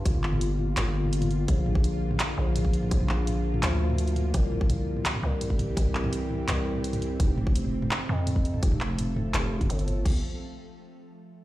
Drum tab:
CC |----------------|----------------|----------------|----------------|
HH |x---x---x---xxx-|x---x---x---x-x-|x---x---x---xxx-|x---x---x---x-x-|
CP |--x-----x-------|--------x-------|--x-----x-------|--------x-------|
T2 |-o-o--o-o--o-o--|o-o----o--o-o--o|-o--o--o-o-o--o-|--o-o--o-o--o-o-|
BD |o---------------|o--o---------o--|o---------------|o--o---------o--|

CC |----------------|----------------|----------------|x---------------|
HH |x---x---x---xxx-|x---x-------x-x-|x---x---x--xxxx-|----------------|
CP |--x-----x-------|--------x-------|--x-----x-------|----------------|
T2 |-o-o--o-o--o-o--|o-o--o-o--o-o--o|-o--o-o--o-o--o-|----------------|
BD |o---------------|o--o---------o--|o----------o----|o---------------|